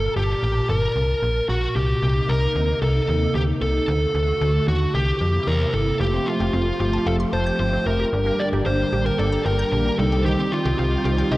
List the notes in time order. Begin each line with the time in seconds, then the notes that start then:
Already playing: A#2 A#3 A4 A5
0.17 G1 G4
0.43 A1
0.70 G1 A#4
0.96 C2
1.23 A#1
1.49 A#1 F#4
1.76 C2 C3 A#3 D#4 G4
2.02 C2
2.29 C2 A#4
2.55 D2
2.82 C2 A4
3.08 D#2
3.35 D2 G4
3.62 C2 A4
3.88 D2 D3 A3 F#4
4.15 D2
4.41 D2
4.68 D#2 F#4
4.94 C2 C3 A#3 E4 G4
5.21 F2
5.47 E2 A#4
5.74 G1 A4
6.00 F1 F3 A3 C4 F4 G4
6.14 C4
6.27 A3 F4
6.40 F1 G4
6.54 F1 C4 F4
6.80 G1 F4 G4
6.93 A5
7.07 F1 A4 F5
7.20 C6
7.33 F1 C5 A5
7.47 G6
7.60 G1 F3 C5
7.73 C4
7.86 F1 A3 A#4
8.00 G4
8.13 G1 D3 G3 A#3 D4 G4
8.26 A#3
8.39 G3 D5
8.53 G1 G4
8.66 G1 A#3 C5
8.93 A1 G4
9.06 A#4 G5
9.19 G1 A4 D5
9.33 A#5
9.46 G1 A#4 G5
9.59 G6
9.72 A#1 D3 A#4
9.86 A#3
9.99 C2 D#3 G3 C4 D#4 G4 A4
10.12 G4
10.25 D#3 G4
10.39 C4
10.52 G3 F4
10.65 C2 G4
10.78 C2 C4 F4
11.05 C2 F4 G4
11.18 G5
11.32 C2 G4 D#5